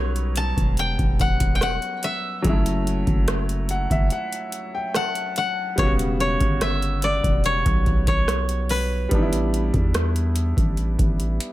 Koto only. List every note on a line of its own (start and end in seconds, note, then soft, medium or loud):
0.00 0.90 B4 medium
0.00 1.20 C#5 medium
0.37 1.63 A5 loud
0.79 1.27 G5 loud
1.21 1.61 F#5 medium
1.55 1.69 G5 medium
1.63 3.02 F#5 loud
2.04 4.91 E5 medium
4.96 5.37 F#5 loud
5.38 6.77 F#5 loud
5.79 5.90 C#5 loud
6.20 7.10 C#5 medium
6.62 8.11 E5 loud
7.04 7.51 D5 medium
7.45 8.07 C#5 loud
8.08 9.74 C#5 medium
8.70 10.48 B4 medium